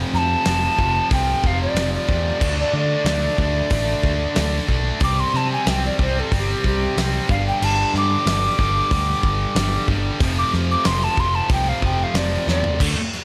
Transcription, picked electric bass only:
0, 0, Header, 1, 3, 480
1, 0, Start_track
1, 0, Tempo, 649351
1, 1787, Time_signature, 4, 2, 24, 8
1, 9787, End_track
2, 0, Start_track
2, 0, Title_t, "Picked electric bass"
2, 0, Program_c, 0, 34
2, 102, Note_on_c, 0, 41, 90
2, 258, Note_off_c, 0, 41, 0
2, 342, Note_on_c, 0, 29, 89
2, 498, Note_off_c, 0, 29, 0
2, 579, Note_on_c, 0, 29, 91
2, 737, Note_off_c, 0, 29, 0
2, 823, Note_on_c, 0, 36, 90
2, 980, Note_off_c, 0, 36, 0
2, 1065, Note_on_c, 0, 29, 85
2, 1221, Note_off_c, 0, 29, 0
2, 1290, Note_on_c, 0, 29, 88
2, 1452, Note_off_c, 0, 29, 0
2, 1545, Note_on_c, 0, 40, 82
2, 1702, Note_off_c, 0, 40, 0
2, 1782, Note_on_c, 0, 38, 100
2, 1940, Note_off_c, 0, 38, 0
2, 2021, Note_on_c, 0, 50, 87
2, 2179, Note_off_c, 0, 50, 0
2, 2252, Note_on_c, 0, 38, 96
2, 2414, Note_off_c, 0, 38, 0
2, 2501, Note_on_c, 0, 38, 93
2, 2660, Note_off_c, 0, 38, 0
2, 2744, Note_on_c, 0, 33, 89
2, 2901, Note_off_c, 0, 33, 0
2, 2984, Note_on_c, 0, 38, 81
2, 3142, Note_off_c, 0, 38, 0
2, 3230, Note_on_c, 0, 38, 91
2, 3385, Note_off_c, 0, 38, 0
2, 3466, Note_on_c, 0, 35, 84
2, 3623, Note_off_c, 0, 35, 0
2, 3702, Note_on_c, 0, 36, 98
2, 3861, Note_off_c, 0, 36, 0
2, 3946, Note_on_c, 0, 48, 91
2, 4103, Note_off_c, 0, 48, 0
2, 4191, Note_on_c, 0, 36, 91
2, 4346, Note_off_c, 0, 36, 0
2, 4428, Note_on_c, 0, 36, 94
2, 4584, Note_off_c, 0, 36, 0
2, 4671, Note_on_c, 0, 31, 93
2, 4826, Note_off_c, 0, 31, 0
2, 4915, Note_on_c, 0, 36, 80
2, 5069, Note_off_c, 0, 36, 0
2, 5156, Note_on_c, 0, 36, 91
2, 5309, Note_off_c, 0, 36, 0
2, 5390, Note_on_c, 0, 31, 85
2, 5546, Note_off_c, 0, 31, 0
2, 5634, Note_on_c, 0, 31, 96
2, 5788, Note_off_c, 0, 31, 0
2, 5869, Note_on_c, 0, 43, 92
2, 6024, Note_off_c, 0, 43, 0
2, 6108, Note_on_c, 0, 31, 95
2, 6264, Note_off_c, 0, 31, 0
2, 6348, Note_on_c, 0, 31, 98
2, 6503, Note_off_c, 0, 31, 0
2, 6588, Note_on_c, 0, 38, 96
2, 6744, Note_off_c, 0, 38, 0
2, 6824, Note_on_c, 0, 31, 85
2, 6981, Note_off_c, 0, 31, 0
2, 7061, Note_on_c, 0, 31, 93
2, 7219, Note_off_c, 0, 31, 0
2, 7305, Note_on_c, 0, 31, 90
2, 7461, Note_off_c, 0, 31, 0
2, 7545, Note_on_c, 0, 29, 101
2, 7701, Note_off_c, 0, 29, 0
2, 7789, Note_on_c, 0, 41, 98
2, 7944, Note_off_c, 0, 41, 0
2, 8025, Note_on_c, 0, 29, 91
2, 8181, Note_off_c, 0, 29, 0
2, 8261, Note_on_c, 0, 29, 101
2, 8419, Note_off_c, 0, 29, 0
2, 8500, Note_on_c, 0, 36, 97
2, 8658, Note_off_c, 0, 36, 0
2, 8738, Note_on_c, 0, 29, 89
2, 8896, Note_off_c, 0, 29, 0
2, 8975, Note_on_c, 0, 29, 97
2, 9135, Note_off_c, 0, 29, 0
2, 9220, Note_on_c, 0, 40, 93
2, 9378, Note_off_c, 0, 40, 0
2, 9465, Note_on_c, 0, 38, 92
2, 9577, Note_off_c, 0, 38, 0
2, 9787, End_track
3, 0, Start_track
3, 0, Title_t, "Muted picked electric bass strokes"
3, 9589, Note_on_c, 9, 29, 43
3, 9663, Note_off_c, 9, 29, 0
3, 9787, End_track
0, 0, End_of_file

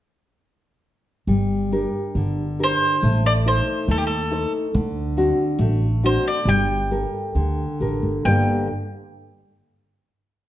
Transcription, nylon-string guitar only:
0, 0, Header, 1, 2, 480
1, 0, Start_track
1, 0, Key_signature, -2, "minor"
1, 0, Tempo, 874636
1, 705, Time_signature, 2, 2, 24, 8
1, 1665, Tempo, 857143
1, 3585, Tempo, 890208
1, 5752, End_track
2, 0, Start_track
2, 0, Title_t, "Nylon-string guitar"
2, 0, Program_c, 0, 24
2, 704, Note_on_c, 0, 55, 52
2, 944, Note_on_c, 0, 62, 38
2, 947, Note_on_c, 0, 67, 35
2, 947, Note_on_c, 0, 70, 41
2, 1172, Note_off_c, 0, 55, 0
2, 1190, Note_on_c, 0, 50, 54
2, 1331, Note_off_c, 0, 62, 0
2, 1332, Note_off_c, 0, 67, 0
2, 1332, Note_off_c, 0, 70, 0
2, 1423, Note_on_c, 0, 62, 36
2, 1424, Note_on_c, 0, 67, 38
2, 1427, Note_on_c, 0, 70, 42
2, 1615, Note_off_c, 0, 62, 0
2, 1616, Note_off_c, 0, 67, 0
2, 1617, Note_off_c, 0, 70, 0
2, 1653, Note_off_c, 0, 50, 0
2, 1664, Note_on_c, 0, 57, 57
2, 1902, Note_on_c, 0, 63, 43
2, 1906, Note_on_c, 0, 69, 37
2, 1909, Note_on_c, 0, 72, 48
2, 2129, Note_off_c, 0, 57, 0
2, 2142, Note_on_c, 0, 57, 62
2, 2285, Note_off_c, 0, 63, 0
2, 2288, Note_off_c, 0, 69, 0
2, 2289, Note_off_c, 0, 72, 0
2, 2381, Note_on_c, 0, 63, 40
2, 2385, Note_on_c, 0, 69, 38
2, 2389, Note_on_c, 0, 72, 47
2, 2573, Note_off_c, 0, 63, 0
2, 2575, Note_off_c, 0, 69, 0
2, 2576, Note_off_c, 0, 72, 0
2, 2606, Note_off_c, 0, 57, 0
2, 2626, Note_on_c, 0, 50, 62
2, 2861, Note_on_c, 0, 60, 43
2, 2864, Note_on_c, 0, 62, 42
2, 2865, Note_on_c, 0, 66, 49
2, 3089, Note_off_c, 0, 50, 0
2, 3106, Note_on_c, 0, 57, 64
2, 3247, Note_off_c, 0, 60, 0
2, 3248, Note_off_c, 0, 62, 0
2, 3249, Note_off_c, 0, 66, 0
2, 3343, Note_on_c, 0, 60, 41
2, 3347, Note_on_c, 0, 62, 41
2, 3349, Note_on_c, 0, 66, 44
2, 3537, Note_off_c, 0, 60, 0
2, 3539, Note_off_c, 0, 62, 0
2, 3541, Note_off_c, 0, 66, 0
2, 3574, Note_off_c, 0, 57, 0
2, 3589, Note_on_c, 0, 55, 59
2, 3826, Note_on_c, 0, 67, 41
2, 3829, Note_on_c, 0, 69, 36
2, 3832, Note_on_c, 0, 70, 45
2, 4052, Note_off_c, 0, 55, 0
2, 4067, Note_on_c, 0, 50, 53
2, 4214, Note_off_c, 0, 67, 0
2, 4214, Note_off_c, 0, 69, 0
2, 4214, Note_off_c, 0, 70, 0
2, 4310, Note_on_c, 0, 67, 39
2, 4311, Note_on_c, 0, 69, 35
2, 4315, Note_on_c, 0, 70, 41
2, 4502, Note_off_c, 0, 67, 0
2, 4503, Note_off_c, 0, 69, 0
2, 4504, Note_off_c, 0, 70, 0
2, 4536, Note_off_c, 0, 50, 0
2, 4551, Note_on_c, 0, 43, 44
2, 4555, Note_on_c, 0, 58, 43
2, 4557, Note_on_c, 0, 50, 41
2, 4559, Note_on_c, 0, 67, 39
2, 4560, Note_on_c, 0, 69, 42
2, 4563, Note_on_c, 0, 74, 49
2, 4772, Note_off_c, 0, 43, 0
2, 4775, Note_off_c, 0, 50, 0
2, 4775, Note_off_c, 0, 58, 0
2, 4777, Note_off_c, 0, 67, 0
2, 4777, Note_off_c, 0, 69, 0
2, 4778, Note_off_c, 0, 74, 0
2, 5752, End_track
0, 0, End_of_file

